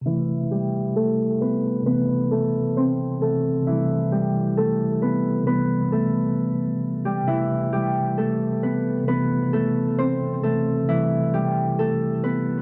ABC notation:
X:1
M:4/4
L:1/8
Q:1/4=133
K:C
V:1 name="Harp"
[E,E]2 [G,G]2 [A,A]2 [B,B]2 | [B,B]2 [A,A]2 [Cc]2 [A,A]2 | [E,E]2 [G,G]2 [A,A]2 [B,B]2 | [B,B]2 [A,A]4- [A,A] [G,G] |
[E,E]2 [G,G]2 [A,A]2 [B,B]2 | [B,B]2 [A,A]2 [Cc]2 [A,A]2 | [E,E]2 [G,G]2 [A,A]2 [B,B]2 |]
V:2 name="Tine electric piano" clef=bass
[C,E,A,]8 | [C,E,A,]6 [C,E,A,]2 | [C,E,G,]8 | [C,E,G,]8 |
[C,E,A,]8 | [C,E,A,]6 [C,E,A,]2 | [C,E,G,]8 |]